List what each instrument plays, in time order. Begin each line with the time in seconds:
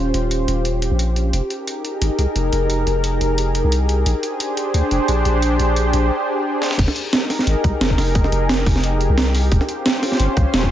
Already playing: 808-style bass D#1, analog synth pad C#4 F4 G4 C5
0.14 808-style bass D#1, closed hi-hat
0.31 closed hi-hat
0.48 808-style bass D#1, closed hi-hat
0.65 closed hi-hat
0.82 closed hi-hat
0.91 808-style bass A#1
0.99 closed hi-hat
1.16 closed hi-hat
1.33 808-style bass F1, analog synth pad D#4 G#4 A#4, closed hi-hat
1.50 closed hi-hat
1.68 closed hi-hat
1.85 closed hi-hat
2.02 808-style bass G#1, closed hi-hat
2.19 808-style bass C2, closed hi-hat
2.36 808-style bass F1, closed hi-hat
2.53 808-style bass F1, closed hi-hat
2.70 closed hi-hat
2.87 808-style bass F1, closed hi-hat
3.04 closed hi-hat
3.21 808-style bass F1, closed hi-hat
3.38 closed hi-hat
3.55 closed hi-hat
3.64 808-style bass C2
3.72 closed hi-hat
3.89 closed hi-hat
4.06 808-style bass A#1, analog synth pad D4 G4 C5, closed hi-hat
4.23 closed hi-hat
4.40 closed hi-hat
4.57 closed hi-hat
4.74 808-style bass D2, closed hi-hat
4.91 808-style bass F1, closed hi-hat
5.08 808-style bass A#1, closed hi-hat
5.25 808-style bass A#1, closed hi-hat
5.42 closed hi-hat
5.59 808-style bass A#1, closed hi-hat
5.76 closed hi-hat
5.93 808-style bass A#1, closed hi-hat
6.62 snare
6.71 snare
6.79 808-style bass F1, analog synth pad D#4 G4 G#4 A#4, kick, closed hi-hat, crash
6.88 snare
6.96 closed hi-hat
7.13 snare, closed hi-hat
7.30 snare, open hi-hat
7.39 snare
7.47 808-style bass G#1, closed hi-hat
7.64 808-style bass C2, kick, closed hi-hat
7.81 808-style bass F1, snare, closed hi-hat
7.90 kick
7.98 808-style bass F1, snare, open hi-hat
8.15 kick, closed hi-hat
8.24 snare
8.32 808-style bass F1, closed hi-hat
8.49 snare, closed hi-hat
8.66 808-style bass F1, kick, open hi-hat
8.76 snare
8.84 closed hi-hat
9.01 closed hi-hat
9.10 808-style bass C2
9.18 snare, closed hi-hat
9.35 open hi-hat
9.52 808-style bass D#1, analog synth pad C#4 F4 C5, kick, closed hi-hat
9.61 snare
9.69 closed hi-hat
9.86 snare, closed hi-hat
10.03 snare, open hi-hat
10.12 snare
10.20 808-style bass G1, closed hi-hat
10.37 808-style bass A#1, kick, closed hi-hat
10.54 808-style bass D#1, snare, closed hi-hat
10.63 kick